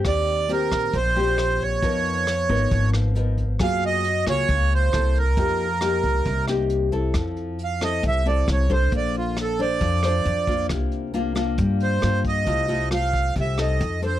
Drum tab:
HH |xxxxxxxx|xxxxxxxx|xxxxxxxx|xxxxxxxx|
SD |r--r--r-|--r--r--|r--r--r-|--r--r--|
BD |o--oo--o|o--oo--o|o--oo--o|o--oo--o|

HH |xxxxxxxx|xxxxxxxx|xxxxxxxx|xxxxxxxx|
SD |r--r--r-|--r--r--|r--r--r-|--r--r--|
BD |o---o--o|o---o--o|o---o--o|o--oo---|